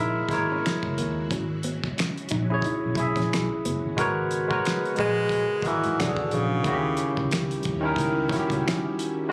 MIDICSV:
0, 0, Header, 1, 9, 480
1, 0, Start_track
1, 0, Key_signature, 5, "minor"
1, 0, Tempo, 666667
1, 945, Time_signature, 4, 2, 24, 8
1, 6712, End_track
2, 0, Start_track
2, 0, Title_t, "Tine electric piano"
2, 0, Program_c, 0, 4
2, 0, Control_c, 0, 64, 127
2, 0, Note_on_c, 0, 56, 90
2, 0, Note_on_c, 0, 64, 90
2, 0, Note_on_c, 0, 70, 86
2, 0, Note_on_c, 0, 73, 122
2, 0, Note_on_c, 0, 76, 100
2, 143, Note_off_c, 0, 56, 0
2, 149, Note_off_c, 0, 64, 0
2, 154, Note_off_c, 0, 70, 0
2, 160, Note_off_c, 0, 76, 0
2, 212, Note_on_c, 0, 56, 74
2, 222, Note_on_c, 0, 64, 71
2, 235, Note_on_c, 0, 70, 81
2, 244, Note_off_c, 0, 73, 0
2, 244, Note_on_c, 0, 73, 89
2, 938, Note_off_c, 0, 56, 0
2, 943, Note_off_c, 0, 64, 0
2, 950, Note_off_c, 0, 70, 0
2, 953, Control_c, 0, 64, 0
2, 954, Note_off_c, 0, 73, 0
2, 1076, Control_c, 0, 64, 127
2, 1800, Note_on_c, 0, 64, 85
2, 1813, Note_on_c, 0, 68, 77
2, 1828, Note_on_c, 0, 73, 93
2, 2068, Note_off_c, 0, 64, 0
2, 2074, Note_off_c, 0, 68, 0
2, 2082, Note_off_c, 0, 73, 0
2, 2139, Note_on_c, 0, 64, 87
2, 2157, Note_on_c, 0, 68, 73
2, 2170, Note_on_c, 0, 76, 80
2, 2695, Note_off_c, 0, 64, 0
2, 2704, Note_off_c, 0, 68, 0
2, 2710, Note_off_c, 0, 76, 0
2, 2856, Note_on_c, 0, 56, 105
2, 2864, Note_on_c, 0, 66, 89
2, 2871, Note_on_c, 0, 70, 101
2, 2872, Control_c, 0, 64, 0
2, 2881, Note_on_c, 0, 71, 97
2, 2886, Note_on_c, 0, 73, 114
2, 2989, Control_c, 0, 64, 127
2, 3137, Note_off_c, 0, 56, 0
2, 3141, Note_off_c, 0, 66, 0
2, 3144, Note_off_c, 0, 70, 0
2, 3149, Note_off_c, 0, 71, 0
2, 3151, Note_off_c, 0, 73, 0
2, 3227, Note_on_c, 0, 56, 83
2, 3238, Note_on_c, 0, 66, 77
2, 3246, Note_on_c, 0, 70, 74
2, 3252, Note_on_c, 0, 71, 77
2, 3260, Note_on_c, 0, 73, 91
2, 3501, Note_off_c, 0, 56, 0
2, 3507, Note_off_c, 0, 66, 0
2, 3511, Note_off_c, 0, 70, 0
2, 3514, Note_off_c, 0, 71, 0
2, 3518, Note_off_c, 0, 73, 0
2, 3569, Note_on_c, 0, 56, 69
2, 3576, Note_on_c, 0, 66, 61
2, 3583, Note_on_c, 0, 70, 61
2, 3593, Note_on_c, 0, 71, 68
2, 3596, Note_on_c, 0, 73, 74
2, 3955, Note_off_c, 0, 56, 0
2, 3959, Note_off_c, 0, 66, 0
2, 3962, Note_off_c, 0, 70, 0
2, 3967, Note_off_c, 0, 71, 0
2, 3968, Note_off_c, 0, 73, 0
2, 4052, Note_on_c, 0, 56, 71
2, 4062, Note_on_c, 0, 66, 65
2, 4073, Note_on_c, 0, 70, 69
2, 4078, Note_on_c, 0, 71, 65
2, 4088, Note_on_c, 0, 75, 76
2, 4296, Note_on_c, 0, 52, 73
2, 4298, Note_off_c, 0, 56, 0
2, 4303, Note_off_c, 0, 66, 0
2, 4307, Note_on_c, 0, 62, 71
2, 4309, Note_off_c, 0, 70, 0
2, 4311, Note_off_c, 0, 71, 0
2, 4314, Note_on_c, 0, 66, 68
2, 4315, Control_c, 0, 64, 0
2, 4316, Note_off_c, 0, 75, 0
2, 4324, Note_on_c, 0, 67, 66
2, 4367, Note_off_c, 0, 67, 0
2, 4372, Note_on_c, 0, 68, 81
2, 4445, Control_c, 0, 64, 127
2, 4697, Note_off_c, 0, 52, 0
2, 4703, Note_off_c, 0, 62, 0
2, 4706, Note_off_c, 0, 66, 0
2, 4735, Note_off_c, 0, 68, 0
2, 4771, Note_on_c, 0, 51, 89
2, 4781, Note_on_c, 0, 61, 83
2, 4790, Note_on_c, 0, 64, 89
2, 4793, Control_c, 0, 64, 0
2, 4804, Note_on_c, 0, 66, 89
2, 4846, Note_on_c, 0, 67, 108
2, 4847, Note_off_c, 0, 66, 0
2, 4925, Control_c, 0, 64, 127
2, 5424, Note_off_c, 0, 51, 0
2, 5429, Note_off_c, 0, 61, 0
2, 5434, Note_off_c, 0, 64, 0
2, 5461, Note_off_c, 0, 67, 0
2, 5621, Note_on_c, 0, 51, 102
2, 5633, Note_on_c, 0, 61, 86
2, 5643, Note_on_c, 0, 64, 80
2, 5653, Note_on_c, 0, 70, 107
2, 5898, Note_off_c, 0, 51, 0
2, 5905, Note_off_c, 0, 61, 0
2, 5910, Note_off_c, 0, 64, 0
2, 5915, Note_off_c, 0, 70, 0
2, 5969, Note_on_c, 0, 51, 72
2, 5976, Note_on_c, 0, 61, 73
2, 5990, Note_on_c, 0, 64, 72
2, 6000, Note_on_c, 0, 66, 72
2, 6045, Note_off_c, 0, 66, 0
2, 6046, Note_on_c, 0, 67, 82
2, 6530, Note_off_c, 0, 51, 0
2, 6533, Note_off_c, 0, 61, 0
2, 6540, Note_off_c, 0, 64, 0
2, 6568, Note_off_c, 0, 67, 0
2, 6687, Note_on_c, 0, 56, 117
2, 6712, Note_off_c, 0, 56, 0
2, 6712, End_track
3, 0, Start_track
3, 0, Title_t, "Hollow-body jazz guitar"
3, 0, Program_c, 1, 26
3, 0, Note_on_c, 1, 63, 90
3, 75, Note_off_c, 1, 63, 0
3, 373, Note_on_c, 1, 61, 69
3, 433, Note_off_c, 1, 61, 0
3, 709, Note_on_c, 1, 58, 77
3, 791, Note_off_c, 1, 58, 0
3, 947, Note_on_c, 1, 61, 70
3, 1030, Note_off_c, 1, 61, 0
3, 1183, Note_on_c, 1, 59, 76
3, 1267, Note_off_c, 1, 59, 0
3, 1662, Note_on_c, 1, 63, 75
3, 1747, Note_off_c, 1, 63, 0
3, 1802, Note_on_c, 1, 61, 71
3, 1866, Note_off_c, 1, 61, 0
3, 1907, Note_on_c, 1, 63, 74
3, 1990, Note_off_c, 1, 63, 0
3, 2278, Note_on_c, 1, 61, 72
3, 2343, Note_off_c, 1, 61, 0
3, 2632, Note_on_c, 1, 59, 72
3, 2713, Note_off_c, 1, 59, 0
3, 6712, End_track
4, 0, Start_track
4, 0, Title_t, "String machine"
4, 0, Program_c, 2, 50
4, 0, Note_on_c, 2, 56, 79
4, 0, Note_on_c, 2, 58, 75
4, 0, Note_on_c, 2, 64, 78
4, 0, Note_on_c, 2, 66, 89
4, 920, Note_off_c, 2, 58, 0
4, 946, Note_on_c, 2, 61, 76
4, 2831, Note_off_c, 2, 66, 0
4, 2832, Note_off_c, 2, 56, 0
4, 2838, Note_off_c, 2, 64, 0
4, 2846, Note_off_c, 2, 61, 0
4, 2858, Note_on_c, 2, 56, 78
4, 2859, Note_on_c, 2, 59, 80
4, 2861, Note_on_c, 2, 66, 92
4, 2864, Note_on_c, 2, 49, 75
4, 4287, Note_off_c, 2, 56, 0
4, 4288, Note_off_c, 2, 59, 0
4, 4290, Note_off_c, 2, 49, 0
4, 4306, Note_on_c, 2, 74, 65
4, 4308, Note_on_c, 2, 52, 68
4, 4314, Note_on_c, 2, 56, 59
4, 4764, Note_off_c, 2, 66, 0
4, 4772, Note_on_c, 2, 51, 90
4, 4773, Note_on_c, 2, 61, 78
4, 4774, Note_on_c, 2, 55, 74
4, 4774, Note_on_c, 2, 64, 88
4, 4781, Note_off_c, 2, 74, 0
4, 4782, Note_off_c, 2, 52, 0
4, 4784, Note_off_c, 2, 56, 0
4, 6679, Note_off_c, 2, 51, 0
4, 6680, Note_off_c, 2, 55, 0
4, 6680, Note_off_c, 2, 61, 0
4, 6680, Note_off_c, 2, 64, 0
4, 6712, End_track
5, 0, Start_track
5, 0, Title_t, "Tenor saxophone"
5, 0, Program_c, 3, 66
5, 3598, Note_on_c, 3, 56, 120
5, 4083, Note_on_c, 3, 52, 95
5, 4094, Note_off_c, 3, 56, 0
5, 4323, Note_on_c, 3, 50, 87
5, 4333, Note_off_c, 3, 52, 0
5, 4560, Note_on_c, 3, 49, 89
5, 4571, Note_off_c, 3, 50, 0
5, 5272, Note_off_c, 3, 49, 0
5, 6712, End_track
6, 0, Start_track
6, 0, Title_t, "Fingered electric bass"
6, 0, Program_c, 4, 33
6, 0, Note_on_c, 4, 34, 85
6, 157, Note_off_c, 4, 34, 0
6, 212, Note_on_c, 4, 32, 87
6, 421, Note_off_c, 4, 32, 0
6, 604, Note_on_c, 4, 30, 84
6, 715, Note_on_c, 4, 39, 84
6, 725, Note_off_c, 4, 30, 0
6, 914, Note_off_c, 4, 39, 0
6, 949, Note_on_c, 4, 32, 112
6, 1266, Note_off_c, 4, 32, 0
6, 1674, Note_on_c, 4, 34, 88
6, 1874, Note_off_c, 4, 34, 0
6, 2057, Note_on_c, 4, 35, 91
6, 2127, Note_off_c, 4, 35, 0
6, 2131, Note_on_c, 4, 35, 82
6, 2252, Note_off_c, 4, 35, 0
6, 2279, Note_on_c, 4, 34, 82
6, 2368, Note_off_c, 4, 34, 0
6, 2395, Note_on_c, 4, 35, 78
6, 2506, Note_off_c, 4, 35, 0
6, 2630, Note_on_c, 4, 30, 84
6, 2743, Note_off_c, 4, 30, 0
6, 2773, Note_on_c, 4, 32, 77
6, 2856, Note_off_c, 4, 32, 0
6, 2872, Note_on_c, 4, 32, 100
6, 3276, Note_off_c, 4, 32, 0
6, 3598, Note_on_c, 4, 34, 88
6, 3911, Note_off_c, 4, 34, 0
6, 4057, Note_on_c, 4, 32, 88
6, 4175, Note_off_c, 4, 32, 0
6, 4213, Note_on_c, 4, 44, 96
6, 4296, Note_off_c, 4, 44, 0
6, 4313, Note_on_c, 4, 28, 86
6, 4424, Note_off_c, 4, 28, 0
6, 4447, Note_on_c, 4, 32, 84
6, 4532, Note_off_c, 4, 32, 0
6, 4554, Note_on_c, 4, 34, 90
6, 4792, Note_off_c, 4, 34, 0
6, 4792, Note_on_c, 4, 39, 104
6, 4992, Note_off_c, 4, 39, 0
6, 5172, Note_on_c, 4, 37, 76
6, 5459, Note_off_c, 4, 37, 0
6, 5518, Note_on_c, 4, 39, 99
6, 5716, Note_off_c, 4, 39, 0
6, 5742, Note_on_c, 4, 37, 103
6, 5947, Note_off_c, 4, 37, 0
6, 6129, Note_on_c, 4, 37, 78
6, 6214, Note_off_c, 4, 37, 0
6, 6712, End_track
7, 0, Start_track
7, 0, Title_t, "Muted fingered electric bass strokes"
7, 1326, Note_on_c, 9, 29, 41
7, 1398, Note_off_c, 9, 29, 0
7, 6712, End_track
8, 0, Start_track
8, 0, Title_t, "Muted hollow-body jazz guitar strokes"
8, 235, Note_on_c, 9, 29, 45
8, 307, Note_off_c, 9, 29, 0
8, 1424, Note_on_c, 9, 29, 40
8, 1496, Note_off_c, 9, 29, 0
8, 2154, Note_on_c, 9, 29, 42
8, 2226, Note_off_c, 9, 29, 0
8, 6712, End_track
9, 0, Start_track
9, 0, Title_t, "Drums"
9, 206, Note_on_c, 9, 36, 98
9, 224, Note_on_c, 9, 42, 69
9, 240, Note_on_c, 9, 38, 36
9, 278, Note_off_c, 9, 36, 0
9, 296, Note_off_c, 9, 42, 0
9, 312, Note_off_c, 9, 38, 0
9, 474, Note_on_c, 9, 26, 75
9, 475, Note_on_c, 9, 42, 73
9, 480, Note_on_c, 9, 38, 101
9, 546, Note_off_c, 9, 26, 0
9, 547, Note_off_c, 9, 42, 0
9, 552, Note_off_c, 9, 38, 0
9, 596, Note_on_c, 9, 36, 85
9, 668, Note_off_c, 9, 36, 0
9, 705, Note_on_c, 9, 42, 74
9, 777, Note_off_c, 9, 42, 0
9, 941, Note_on_c, 9, 36, 102
9, 942, Note_on_c, 9, 42, 68
9, 1013, Note_off_c, 9, 36, 0
9, 1014, Note_off_c, 9, 42, 0
9, 1175, Note_on_c, 9, 42, 59
9, 1247, Note_off_c, 9, 42, 0
9, 1322, Note_on_c, 9, 36, 94
9, 1394, Note_off_c, 9, 36, 0
9, 1427, Note_on_c, 9, 42, 80
9, 1435, Note_on_c, 9, 26, 75
9, 1441, Note_on_c, 9, 38, 93
9, 1499, Note_off_c, 9, 42, 0
9, 1507, Note_off_c, 9, 26, 0
9, 1513, Note_off_c, 9, 38, 0
9, 1566, Note_on_c, 9, 42, 39
9, 1638, Note_off_c, 9, 42, 0
9, 1647, Note_on_c, 9, 42, 63
9, 1667, Note_on_c, 9, 36, 95
9, 1719, Note_off_c, 9, 42, 0
9, 1739, Note_off_c, 9, 36, 0
9, 1888, Note_on_c, 9, 36, 84
9, 1903, Note_on_c, 9, 42, 70
9, 1960, Note_off_c, 9, 36, 0
9, 1975, Note_off_c, 9, 42, 0
9, 2127, Note_on_c, 9, 36, 102
9, 2142, Note_on_c, 9, 42, 69
9, 2199, Note_off_c, 9, 36, 0
9, 2214, Note_off_c, 9, 42, 0
9, 2274, Note_on_c, 9, 36, 81
9, 2280, Note_on_c, 9, 42, 42
9, 2308, Note_on_c, 9, 38, 32
9, 2346, Note_off_c, 9, 36, 0
9, 2352, Note_off_c, 9, 42, 0
9, 2380, Note_off_c, 9, 38, 0
9, 2400, Note_on_c, 9, 26, 78
9, 2400, Note_on_c, 9, 42, 73
9, 2406, Note_on_c, 9, 38, 91
9, 2472, Note_off_c, 9, 26, 0
9, 2472, Note_off_c, 9, 42, 0
9, 2478, Note_off_c, 9, 38, 0
9, 2629, Note_on_c, 9, 42, 69
9, 2701, Note_off_c, 9, 42, 0
9, 2865, Note_on_c, 9, 36, 104
9, 2867, Note_on_c, 9, 42, 73
9, 2937, Note_off_c, 9, 36, 0
9, 2939, Note_off_c, 9, 42, 0
9, 3101, Note_on_c, 9, 42, 64
9, 3173, Note_off_c, 9, 42, 0
9, 3245, Note_on_c, 9, 36, 83
9, 3317, Note_off_c, 9, 36, 0
9, 3351, Note_on_c, 9, 42, 81
9, 3359, Note_on_c, 9, 26, 84
9, 3365, Note_on_c, 9, 38, 96
9, 3423, Note_off_c, 9, 42, 0
9, 3431, Note_off_c, 9, 26, 0
9, 3437, Note_off_c, 9, 38, 0
9, 3495, Note_on_c, 9, 42, 38
9, 3567, Note_off_c, 9, 42, 0
9, 3572, Note_on_c, 9, 42, 57
9, 3590, Note_on_c, 9, 36, 100
9, 3644, Note_off_c, 9, 42, 0
9, 3662, Note_off_c, 9, 36, 0
9, 3812, Note_on_c, 9, 36, 89
9, 3829, Note_on_c, 9, 42, 70
9, 3884, Note_off_c, 9, 36, 0
9, 3901, Note_off_c, 9, 42, 0
9, 4049, Note_on_c, 9, 36, 102
9, 4066, Note_on_c, 9, 42, 67
9, 4082, Note_on_c, 9, 38, 33
9, 4121, Note_off_c, 9, 36, 0
9, 4138, Note_off_c, 9, 42, 0
9, 4154, Note_off_c, 9, 38, 0
9, 4202, Note_on_c, 9, 42, 40
9, 4274, Note_off_c, 9, 42, 0
9, 4318, Note_on_c, 9, 26, 76
9, 4319, Note_on_c, 9, 42, 79
9, 4324, Note_on_c, 9, 38, 95
9, 4390, Note_off_c, 9, 26, 0
9, 4391, Note_off_c, 9, 42, 0
9, 4396, Note_off_c, 9, 38, 0
9, 4439, Note_on_c, 9, 36, 100
9, 4511, Note_off_c, 9, 36, 0
9, 4546, Note_on_c, 9, 42, 73
9, 4618, Note_off_c, 9, 42, 0
9, 4783, Note_on_c, 9, 42, 75
9, 4784, Note_on_c, 9, 36, 96
9, 4855, Note_off_c, 9, 42, 0
9, 4856, Note_off_c, 9, 36, 0
9, 5017, Note_on_c, 9, 42, 62
9, 5089, Note_off_c, 9, 42, 0
9, 5164, Note_on_c, 9, 36, 78
9, 5236, Note_off_c, 9, 36, 0
9, 5266, Note_on_c, 9, 42, 82
9, 5274, Note_on_c, 9, 26, 78
9, 5280, Note_on_c, 9, 38, 101
9, 5338, Note_off_c, 9, 42, 0
9, 5346, Note_off_c, 9, 26, 0
9, 5352, Note_off_c, 9, 38, 0
9, 5407, Note_on_c, 9, 42, 45
9, 5479, Note_off_c, 9, 42, 0
9, 5493, Note_on_c, 9, 42, 63
9, 5511, Note_on_c, 9, 36, 99
9, 5565, Note_off_c, 9, 42, 0
9, 5583, Note_off_c, 9, 36, 0
9, 5732, Note_on_c, 9, 36, 93
9, 5748, Note_on_c, 9, 42, 70
9, 5804, Note_off_c, 9, 36, 0
9, 5820, Note_off_c, 9, 42, 0
9, 5972, Note_on_c, 9, 36, 96
9, 5994, Note_on_c, 9, 42, 73
9, 6010, Note_on_c, 9, 38, 38
9, 6044, Note_off_c, 9, 36, 0
9, 6066, Note_off_c, 9, 42, 0
9, 6082, Note_off_c, 9, 38, 0
9, 6120, Note_on_c, 9, 36, 81
9, 6130, Note_on_c, 9, 42, 44
9, 6192, Note_off_c, 9, 36, 0
9, 6202, Note_off_c, 9, 42, 0
9, 6247, Note_on_c, 9, 26, 76
9, 6248, Note_on_c, 9, 42, 76
9, 6253, Note_on_c, 9, 38, 99
9, 6319, Note_off_c, 9, 26, 0
9, 6320, Note_off_c, 9, 42, 0
9, 6325, Note_off_c, 9, 38, 0
9, 6473, Note_on_c, 9, 42, 74
9, 6545, Note_off_c, 9, 42, 0
9, 6712, End_track
0, 0, End_of_file